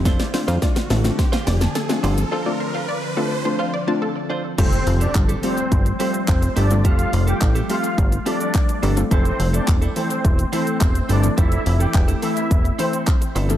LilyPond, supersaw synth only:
\new Staff \with { instrumentName = "Supersaw synth" } { \time 4/4 \key d \minor \tempo 4 = 106 r1 | r1 | <c' c''>8 r16 <d' d''>16 r8 <c' c''>8. r16 <c' c''>16 r16 <c' c''>16 r16 <d' d''>16 r16 | <f' f''>8 r16 <g' g''>16 r8 <f' f''>8 r8 <d' d''>8. r8. |
<c' c''>8 r16 <d' d''>16 r8 <c' c''>8. r16 <c' c''>16 r16 <c' c''>16 r16 <d' d''>16 r16 | <e' e''>8 r16 <g' g''>16 r8 <e' e''>8. r16 <c' c''>16 r4 r16 | }